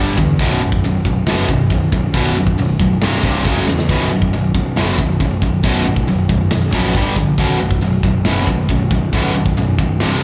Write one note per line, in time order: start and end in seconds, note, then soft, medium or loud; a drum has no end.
0.00 0.16 G1 medium
0.00 0.17 G2 medium
0.00 0.17 D3 medium
0.00 0.18 G3 medium
0.18 0.38 E2 medium
0.18 0.38 G2 medium
0.18 0.38 D3 medium
0.18 kick medium
0.39 0.59 B0 medium
0.39 0.61 B1 medium
0.39 0.61 F#2 medium
0.39 0.61 B2 medium
0.39 kick loud
0.39 open hi-hat soft
0.61 0.82 B0 medium
0.61 0.82 B1 medium
0.61 0.82 F#2 medium
0.72 kick medium
0.83 1.03 B0 medium
0.83 1.04 B1 medium
0.83 1.04 F#2 medium
0.83 open hi-hat medium
1.05 1.25 B0 medium
1.05 1.25 B1 medium
1.05 1.25 F#2 medium
1.05 kick medium
1.26 1.47 F#1 medium
1.26 1.48 B1 medium
1.26 1.48 F#2 medium
1.26 1.48 B2 medium
1.26 snare loud
1.26 open hi-hat medium
1.49 1.69 B0 medium
1.49 1.69 B1 medium
1.49 1.69 F#2 medium
1.49 kick medium
1.70 1.90 B0 medium
1.70 1.90 B1 medium
1.70 1.90 F#2 medium
1.70 kick medium
1.70 open hi-hat medium
1.92 2.12 B0 medium
1.92 2.12 B1 medium
1.92 2.12 F#2 medium
1.92 kick medium
2.14 2.34 B0 medium
2.14 2.34 B1 medium
2.14 2.35 F#2 medium
2.14 2.35 B2 loud
2.14 kick medium
2.14 open hi-hat medium
2.36 2.56 B0 medium
2.36 2.56 B1 medium
2.36 2.56 F#2 medium
2.47 kick medium
2.58 2.78 B0 medium
2.58 2.78 B1 medium
2.58 2.78 F#2 medium
2.58 open hi-hat medium
2.79 3.00 B0 medium
2.79 3.00 B1 medium
2.79 3.00 F#2 medium
2.79 kick medium
3.01 3.21 C1 medium
3.01 3.22 C2 medium
3.01 3.23 G2 medium
3.01 3.23 C3 loud
3.01 snare loud
3.01 open hi-hat medium
3.23 3.43 C1 medium
3.23 3.44 C2 medium
3.23 3.44 G2 medium
3.23 3.44 C3 medium
3.23 kick medium
3.45 3.65 F#1 medium
3.45 3.66 F#2 medium
3.45 3.66 C#3 medium
3.45 3.67 F#3 medium
3.45 kick medium
3.45 snare medium
3.57 snare medium
3.67 3.90 E2 medium
3.67 3.87 F#2 medium
3.67 3.87 C#3 medium
3.67 snare medium
3.79 snare medium
3.89 4.09 B0 medium
3.89 4.09 B1 medium
3.89 4.10 F#2 medium
3.89 4.10 B2 loud
3.89 kick loud
3.89 open hi-hat medium
4.11 4.31 B0 medium
4.11 4.30 B1 medium
4.11 4.31 F#2 medium
4.22 kick medium
4.33 4.53 B0 medium
4.33 4.53 B1 medium
4.33 4.53 F#2 medium
4.33 open hi-hat soft
4.55 4.75 B0 medium
4.55 4.74 B1 medium
4.55 4.74 F#2 medium
4.55 kick medium
4.77 4.97 F#1 medium
4.77 4.97 B1 medium
4.77 4.98 F#2 medium
4.77 4.98 B2 medium
4.77 snare loud
4.77 open hi-hat medium
4.98 5.18 B0 medium
4.98 5.18 B1 medium
4.98 5.18 F#2 medium
4.98 kick medium
5.20 5.40 B0 medium
5.20 5.40 B1 medium
5.20 5.40 F#2 medium
5.20 kick medium
5.20 open hi-hat soft
5.42 5.62 B0 medium
5.42 5.62 B1 medium
5.42 5.62 F#2 medium
5.42 kick medium
5.63 5.84 B0 medium
5.63 5.84 B1 medium
5.63 5.84 F#2 medium
5.63 5.85 B2 loud
5.63 kick loud
5.63 open hi-hat soft
5.86 6.06 B0 medium
5.86 6.05 B1 medium
5.86 6.06 F#2 medium
5.96 kick medium
6.07 6.28 B0 medium
6.07 6.27 B1 medium
6.07 6.27 F#2 medium
6.07 open hi-hat medium
6.29 6.49 B0 medium
6.29 6.49 B1 medium
6.29 6.49 F#2 medium
6.29 kick medium
6.51 6.71 B0 medium
6.51 6.71 B1 medium
6.51 6.71 F#2 medium
6.51 snare loud
6.51 open hi-hat medium
6.72 6.93 A#1 medium
6.72 6.94 B1 medium
6.72 6.94 F#2 medium
6.72 6.94 B2 medium
6.72 kick medium
6.94 7.15 G1 medium
6.94 7.16 G2 medium
6.94 7.16 D3 medium
6.94 7.16 G3 medium
6.94 kick medium
6.94 open hi-hat medium
7.16 7.36 A#1 medium
7.16 7.37 G2 medium
7.16 7.37 D3 medium
7.16 kick medium
7.38 7.58 B0 loud
7.38 7.59 B1 medium
7.38 7.60 F#2 medium
7.38 7.60 B2 loud
7.38 kick loud
7.38 open hi-hat medium
7.61 7.81 B0 medium
7.61 7.81 B1 medium
7.61 7.81 F#2 medium
7.71 kick medium
7.81 8.02 B0 medium
7.81 8.02 B1 medium
7.81 8.02 F#2 medium
7.81 open hi-hat medium
8.03 8.24 B0 medium
8.03 8.24 B1 medium
8.03 8.24 F#2 medium
8.03 kick medium
8.25 8.46 F#1 medium
8.25 8.46 B1 medium
8.25 8.46 F#2 medium
8.25 8.47 B2 loud
8.25 snare loud
8.25 open hi-hat medium
8.47 8.68 B0 medium
8.47 8.68 B1 medium
8.47 8.68 F#2 medium
8.47 kick medium
8.69 8.89 B0 medium
8.69 8.89 B1 medium
8.69 8.90 F#2 medium
8.69 kick medium
8.69 open hi-hat medium
8.91 9.11 B0 medium
8.91 9.11 B1 medium
8.91 9.11 F#2 medium
8.91 kick medium
9.13 9.33 B0 medium
9.13 9.34 B1 medium
9.13 9.34 F#2 medium
9.13 9.34 B2 medium
9.13 kick loud
9.13 open hi-hat medium
9.35 9.55 B0 medium
9.35 9.55 B1 medium
9.35 9.55 F#2 medium
9.46 kick medium
9.57 9.77 B0 medium
9.57 9.77 B1 medium
9.57 9.77 F#2 medium
9.57 open hi-hat medium
9.78 9.99 B0 medium
9.78 9.98 B1 medium
9.78 9.98 F#2 medium
9.78 kick medium
10.00 10.21 C1 medium
10.00 10.21 C2 medium
10.00 10.21 G2 medium
10.00 10.22 C3 medium
10.00 snare loud
10.00 open hi-hat medium